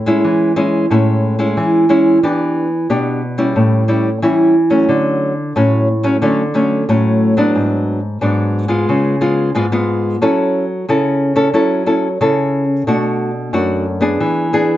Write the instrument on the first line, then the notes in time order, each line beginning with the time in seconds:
nylon-string guitar
Already playing: A2
0.06 G#3 C#4 E4
0.24 E3
0.56 G#3 C#4 E4
0.91 A2 G#3 C#4 E4
1.39 G#3 C#4 E4
1.57 E3
1.89 G#3 C#4 E4
2.23 E3 B3 D4 G4
2.90 B2 B3 D4 G4
3.38 G3 C#4 E4
3.56 A2
3.88 G3 C#4 E4
4.22 E3 G3 C#4 E4
4.70 F#3 A3 C#4
4.89 D3
5.56 A2 F#3 A3 C#4
6.03 F#3 A3 C#4
6.22 D3 F#3 A3 C#4
6.54 F#3 A3 C#4
6.89 A2 F#3 A3 C#4
7.37 F#3 B3 D4
7.55 G#2
8.21 G#2 F#3 B3 D4
8.68 G#3 B3 F4
8.89 C#3
9.21 G#3 B3 F4
9.55 G#2 G#3 B3 F4
9.72 G#3 B3 F4
10.22 F#3 C#4 E4 A4
10.89 C#3 C#4 E4 A4
11.36 C#4 E4 A4
11.54 F#3 C#4 E4 A4
11.86 C#4 E4 A4
12.21 C#3 C#4 E4 A4
12.87 B2 A3 D4 F#4
13.53 F#2 A3 D4 F#4
14.01 B3 D4 G#4
14.20 E3
14.53 B3 D4 G#4